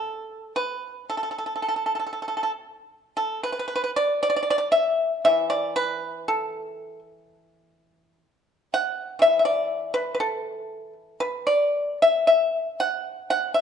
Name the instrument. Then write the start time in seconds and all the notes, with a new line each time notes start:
pipa
Already playing: A4
0.56 B4
1.10 A4
1.17 A4
1.23 A4
1.31 A4
1.38 A4
1.46 A4
1.56 A4
1.62 A4
1.68 A4
1.76 A4
1.86 A4
1.95 A4
1.99 A4
2.07 A4
2.13 A4
2.22 A4
2.28 A4
2.37 A4
2.43 A4
3.17 A4
3.43 B4
3.52 B4
3.59 B4
3.68 B4
3.76 B4
3.84 B4
3.96 D5
4.23 D5
4.30 D5
4.36 D5
4.43 D5
4.50 D5
4.58 D5
4.72 E5
5.25 E3 E5
5.50 D5
5.76 B4
6.28 A4
8.74 F#5
9.19 E3 E5
9.39 E5
9.45 D5
9.94 B4
10.15 B4
10.20 A4
11.20 B4
11.47 D5
12.02 E5
12.27 E5
12.80 F#5
13.30 F#5
13.54 E5